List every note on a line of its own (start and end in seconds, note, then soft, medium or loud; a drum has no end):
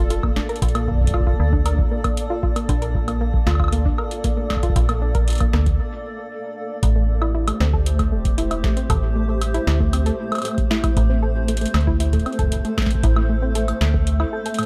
0.00 0.41 F1 medium
0.00 6.79 A#3 medium
0.00 5.79 A4 medium
0.00 6.79 A4 medium
0.00 6.79 D5 medium
0.10 0.21 F4 medium
0.10 closed hi-hat medium
0.23 0.34 A#3 medium
0.23 kick medium
0.23 high woodblock soft
0.36 0.46 D4 medium
0.36 snare loud
0.49 0.55 A#4 medium
0.49 closed hi-hat soft
0.56 closed hi-hat soft
0.62 1.32 A#1 loud
0.62 kick loud
0.62 closed hi-hat medium
0.69 closed hi-hat soft
0.75 0.85 A#3 medium
0.75 closed hi-hat soft
0.75 high woodblock medium
0.88 1.00 A#3 medium
0.88 kick soft
0.91 kick medium
0.94 kick medium
0.98 kick medium
1.01 kick medium
1.04 kick medium
1.04 closed hi-hat medium
1.07 kick medium
1.11 1.24 F4 loud
1.11 kick loud
1.11 high woodblock soft
1.14 kick loud
1.20 kick medium
1.27 1.37 F4 medium
1.27 kick medium
1.33 kick medium
1.40 1.83 D2 loud
1.40 1.50 A#3 medium
1.53 1.63 D4 medium
1.53 kick loud
1.66 1.72 A#4 medium
1.66 closed hi-hat medium
1.66 high woodblock soft
1.78 kick loud
1.91 2.02 A#3 medium
2.04 2.17 A#3 medium
2.04 kick loud
2.04 closed hi-hat soft
2.04 high woodblock medium
2.17 closed hi-hat medium
2.30 2.40 F4 loud
2.43 2.53 F4 medium
2.43 kick loud
2.56 2.66 A#3 medium
2.56 closed hi-hat soft
2.56 high woodblock medium
2.69 3.38 A#1 loud
2.69 2.79 D4 medium
2.69 kick loud
2.69 closed hi-hat medium
2.82 2.88 A#4 medium
2.82 closed hi-hat soft
2.95 kick loud
3.08 3.18 A#3 medium
3.08 closed hi-hat soft
3.08 high woodblock medium
3.21 3.33 A#3 medium
3.34 kick loud
3.47 3.90 D2 loud
3.47 3.57 F4 loud
3.47 snare loud
3.47 high woodblock soft
3.51 high woodblock soft
3.55 high woodblock medium
3.60 3.70 F4 medium
3.60 kick loud
3.60 high woodblock medium
3.64 high woodblock medium
3.68 high woodblock medium
3.72 3.83 A#3 medium
3.72 closed hi-hat medium
3.85 3.96 D4 medium
3.85 kick medium
3.98 4.04 A#4 medium
3.98 high woodblock medium
4.11 closed hi-hat soft
4.24 4.34 A#3 medium
4.24 kick loud
4.24 closed hi-hat medium
4.37 4.49 A#3 medium
4.50 kick soft
4.50 snare loud
4.50 high woodblock soft
4.53 high woodblock soft
4.55 kick medium
4.55 high woodblock soft
4.58 high woodblock soft
4.60 4.73 F4 loud
4.60 kick medium
4.60 closed hi-hat soft
4.60 high woodblock soft
4.69 kick medium
4.76 5.45 A#1 loud
4.76 4.86 F4 medium
4.76 kick loud
4.76 closed hi-hat medium
4.89 4.99 A#3 medium
4.89 closed hi-hat soft
4.89 high woodblock medium
5.02 5.12 D4 medium
5.15 5.21 A#4 medium
5.15 kick loud
5.15 closed hi-hat soft
5.28 closed hi-hat medium
5.30 closed hi-hat medium
5.33 closed hi-hat soft
5.35 closed hi-hat soft
5.38 closed hi-hat soft
5.40 5.51 A#3 medium
5.40 kick loud
5.40 closed hi-hat soft
5.40 high woodblock medium
5.53 5.79 D2 loud
5.53 5.66 A#3 medium
5.53 snare loud
5.66 kick loud
5.66 closed hi-hat soft
6.83 7.52 A1 loud
6.83 6.93 A3 medium
6.83 14.66 A3 medium
6.83 10.93 G4 medium
6.83 14.66 C5 medium
6.83 kick loud
6.83 closed hi-hat medium
6.96 7.08 A3 medium
7.22 7.32 E4 loud
7.22 high woodblock medium
7.35 7.45 E4 medium
7.48 7.58 A3 medium
7.48 closed hi-hat medium
7.48 high woodblock medium
7.60 8.14 D2 loud
7.60 7.71 C4 medium
7.60 snare loud
7.73 7.79 A4 medium
7.73 kick medium
7.86 closed hi-hat medium
7.99 8.09 A3 medium
7.99 kick medium
7.99 closed hi-hat soft
7.99 high woodblock medium
8.12 8.69 E1 medium
8.12 8.24 A3 medium
8.25 kick loud
8.25 closed hi-hat medium
8.38 8.48 E4 loud
8.38 closed hi-hat medium
8.51 8.61 E4 medium
8.51 closed hi-hat soft
8.51 high woodblock medium
8.64 8.74 A3 medium
8.64 kick loud
8.64 snare loud
8.77 8.87 C4 medium
8.77 closed hi-hat medium
8.90 9.59 A1 loud
8.90 8.96 A4 medium
8.90 kick loud
8.90 closed hi-hat medium
8.90 high woodblock medium
8.92 kick loud
8.95 kick medium
8.97 kick medium
9.00 kick medium
9.16 9.26 A3 medium
9.28 9.41 A3 medium
9.41 closed hi-hat medium
9.41 high woodblock medium
9.54 9.65 E4 loud
9.54 closed hi-hat soft
9.67 10.11 D2 loud
9.67 9.77 E4 medium
9.67 snare loud
9.80 9.90 A3 medium
9.80 kick medium
9.93 10.03 C4 medium
9.93 closed hi-hat medium
9.93 high woodblock medium
10.06 10.12 A4 medium
10.06 closed hi-hat soft
10.32 10.42 A3 medium
10.32 closed hi-hat soft
10.32 high woodblock medium
10.35 closed hi-hat soft
10.35 high woodblock medium
10.38 closed hi-hat soft
10.38 high woodblock medium
10.42 10.57 A3 medium
10.42 closed hi-hat soft
10.42 high woodblock soft
10.45 closed hi-hat medium
10.45 high woodblock soft
10.51 high woodblock soft
10.55 kick loud
10.55 closed hi-hat soft
10.55 high woodblock soft
10.71 10.81 E4 loud
10.71 snare loud
10.84 10.94 E4 medium
10.84 kick loud
10.84 closed hi-hat medium
10.84 high woodblock medium
10.97 11.66 A1 loud
10.97 11.07 A3 medium
10.97 14.66 A4 medium
10.97 kick loud
10.97 closed hi-hat medium
11.10 11.20 C4 medium
11.23 11.29 A4 medium
11.48 11.59 A3 medium
11.48 closed hi-hat medium
11.57 closed hi-hat medium
11.61 11.74 A3 medium
11.61 closed hi-hat soft
11.66 closed hi-hat medium
11.68 closed hi-hat soft
11.74 12.18 D2 loud
11.74 snare loud
11.74 closed hi-hat soft
11.74 high woodblock medium
11.81 closed hi-hat soft
11.87 11.97 E4 loud
11.87 kick medium
12.00 12.10 E4 medium
12.00 closed hi-hat medium
12.13 12.23 A3 medium
12.13 kick medium
12.13 closed hi-hat soft
12.16 kick medium
12.18 kick medium
12.18 closed hi-hat soft
12.26 12.36 C4 medium
12.26 closed hi-hat soft
12.26 high woodblock soft
12.33 closed hi-hat soft
12.39 12.45 A4 medium
12.39 kick loud
12.39 closed hi-hat medium
12.43 kick medium
12.47 kick medium
12.52 kick medium
12.52 closed hi-hat medium
12.56 kick soft
12.60 kick soft
12.65 12.75 A3 medium
12.65 closed hi-hat soft
12.78 12.90 A3 medium
12.78 kick loud
12.78 snare loud
12.78 high woodblock soft
12.82 snare loud
12.86 kick loud
12.86 snare medium
12.91 closed hi-hat medium
12.95 kick medium
13.03 13.73 A1 loud
13.03 13.14 E4 loud
13.03 kick loud
13.03 closed hi-hat medium
13.16 13.27 E4 medium
13.16 high woodblock medium
13.29 13.40 A3 medium
13.42 13.53 C4 medium
13.55 13.61 A4 medium
13.55 closed hi-hat medium
13.68 closed hi-hat soft
13.68 high woodblock medium
13.81 14.25 D2 loud
13.81 13.91 A3 medium
13.81 snare loud
13.94 14.06 A3 medium
13.94 kick medium
14.07 closed hi-hat medium
14.20 14.30 E4 loud
14.20 high woodblock soft
14.33 14.43 A4 medium
14.46 14.56 A4 medium
14.46 closed hi-hat soft
14.54 closed hi-hat soft
14.59 14.66 A2 medium
14.59 closed hi-hat medium
14.59 high woodblock medium